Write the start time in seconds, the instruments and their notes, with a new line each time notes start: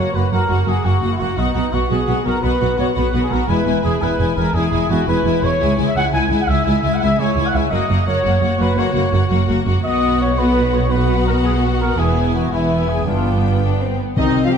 Already playing: viola section A#3, violin section F#4 F#5, trumpet section C#5
0.13 double bass section F#1, cello section F#2, viola section A#3, violin section F#4 F#5, trumpet section B4
0.30 double bass section F#1, cello section F#2, viola section A#3, violin section F#4 F#5, trumpet section A#4
0.48 double bass section F#1, cello section F#2, viola section A#3, violin section F#4 F#5
0.65 double bass section F#1, cello section F#2, viola section A#3, violin section F#4 F#5, trumpet section G#4
0.83 double bass section F#1, cello section F#2, viola section A#3, violin section F#4 F#5, trumpet section F#4
1.00 double bass section F#1, cello section F#2, viola section A#3, violin section F#4 F#5
1.12 trumpet section E4
1.16 double bass section F#1, cello section F#2, violin section F#4 F#5, trumpet section F#4
1.21 viola section A#3
1.35 double bass section B1, cello section B2, viola section B3, trumpet section D#4, violin section F#4 F#5
1.54 double bass section B1, cello section B2, viola section B3, violin section F#4 F#5
1.71 double bass section B1, cello section B2, viola section B3, violin section F#4 F#5, trumpet section F#4
1.89 double bass section B1, cello section B2, viola section B3, violin section F#4 F#5, trumpet section G#4
2.06 double bass section B1, cello section B2, viola section B3, violin section F#4 F#5
2.24 double bass section B1, cello section B2, viola section B3, violin section F#4 F#5, trumpet section A#4
2.41 double bass section B1, cello section B2, viola section B3, violin section F#4 F#5, trumpet section B4
2.59 double bass section B1, cello section B2, viola section B3, violin section F#4 F#5
2.77 double bass section B1, cello section B2, viola section B3, violin section F#4 F#5, trumpet section C#5
2.95 double bass section B1, cello section B2, viola section B3, violin section F#4 F#5, trumpet section B4
3.12 double bass section B1, cello section B2, viola section B3, violin section F#4 F#5
3.23 trumpet section G#4
3.30 double bass section B1, cello section B2, viola section B3, violin section F#4 F#5, trumpet section A#4
3.48 double bass section E1, cello section E2, viola section G#3, violin section E4 G#5, trumpet section B4
3.65 double bass section E1, cello section E2, viola section G#3, violin section E4 G#5
3.82 double bass section E1, cello section E2, viola section G#3, violin section E4 G#5, trumpet section G#4
4.00 double bass section E1, cello section E2, viola section G#3, violin section E4 G#5, trumpet section B4
4.18 double bass section E1, cello section E2, viola section G#3, violin section E4 G#5
4.36 double bass section E1, cello section E2, viola section G#3, violin section E4 G#5, trumpet section A#4
4.54 double bass section E1, cello section E2, viola section G#3, violin section E4 G#5, trumpet section G#4
4.71 double bass section E1, cello section E2, viola section G#3, violin section E4 G#5
4.89 double bass section E1, cello section E2, viola section G#3, violin section E4 G#5, trumpet section F#4
5.06 double bass section E1, cello section E2, viola section G#3, violin section E4 G#5, trumpet section B4
5.24 double bass section E1, cello section E2, viola section G#3, violin section E4 G#5
5.41 double bass section E1, cello section E2, viola section G#3, violin section E4 G#5, trumpet section C#5
5.59 double bass section C#2, cello section C#2, viola section G#3, violin section E4 G#5
5.77 cello section C#2, double bass section C#2, viola section G#3, violin section E4 G#5
5.88 trumpet section E5
5.95 double bass section C#2, cello section C#2, viola section G#3, violin section E4 G#5, trumpet section F#5
6.12 double bass section C#2, cello section C#2, viola section G#3, violin section E4 G#5, trumpet section G#5
6.29 double bass section C#2, cello section C#2, viola section G#3, violin section E4 G#5
6.41 trumpet section F#5
6.47 double bass section C#2, cello section C#2, viola section G#3, violin section E4 G#5, trumpet section E5
6.65 double bass section C#2, cello section C#2, viola section G#3, violin section E4 G#5, trumpet section E5
6.82 double bass section C#2, cello section C#2, viola section G#3, violin section E4 G#5
6.93 trumpet section F#5
7.00 cello section C#2, double bass section C#2, viola section G#3, violin section E4 G#5, trumpet section E5
7.18 double bass section C#2, cello section C#2, viola section G#3, violin section E4 G#5, trumpet section C#5
7.35 cello section C#2, double bass section C#2, viola section G#3, violin section E4 G#5
7.46 trumpet section F#5
7.53 cello section C#2, double bass section C#2, viola section G#3, violin section E4 G#5, trumpet section E5
7.70 double bass section F#1, cello section F#2, viola section A#3, violin section F#4 F#5, trumpet section D#5
7.89 double bass section F#1, cello section F#2, viola section A#3, violin section F#4 F#5
8.05 double bass section F#1, cello section F#2, viola section A#3, trumpet section C#5, violin section F#5
8.09 violin section F#4
8.24 double bass section F#1, cello section F#2, viola section A#3, violin section F#4 F#5
8.41 double bass section F#1, cello section F#2, viola section A#3, violin section F#4 F#5
8.58 double bass section F#1, cello section F#2, viola section A#3, violin section F#4 F#5, trumpet section B4
8.76 double bass section F#1, cello section F#2, viola section A#3, violin section F#4 F#5, trumpet section C#5
8.93 double bass section F#1, cello section F#2, viola section A#3, violin section F#4 F#5
9.11 double bass section F#1, cello section F#2, viola section A#3, violin section F#4 F#5
9.29 double bass section F#1, cello section F#2, viola section A#3, violin section F#4 F#5
9.47 double bass section F#1, cello section F#2, viola section A#3, violin section F#4 F#5
9.65 double bass section F#1, cello section F#2, viola section A#3, violin section F#4 F#5
9.83 double bass section B1, cello section B2, viola section B3, violin section F#4 F#5, trumpet section D#5
10.19 trumpet section C#5
10.36 viola section B3, violin section F#4 F#5, trumpet section B4
10.73 trumpet section C#5
10.90 viola section B3, violin section F#4 F#5, trumpet section B4
11.26 trumpet section A#4
11.44 trumpet section G#4
11.72 trumpet section F#4
11.80 trumpet section A#4
11.97 double bass section E1, cello section E2, viola section B3, violin section E4 G#5, trumpet section G#4
12.34 trumpet section F#4
12.51 double bass section E1, cello section E2, viola section B3, trumpet section E4, violin section E4 G#5
12.88 trumpet section G#4
13.06 double bass section G1, cello section G2, viola section B3, violin section D4 G5, trumpet section F4
13.62 violin section D4
13.82 violin section C4
14.01 violin section B3
14.16 double bass section C2, timpani C3, trombone section C3 C4, french horn section D#3, cello section D#3, clarinet C4, viola section D#4, violin section D#5, flute D#5, trumpet section G5
14.35 double bass section C2
14.43 cello section F3, french horn section F3, viola section F4, violin section F5, flute F5
14.52 french horn section G3, cello section G3, viola section G4, violin section G5, flute G5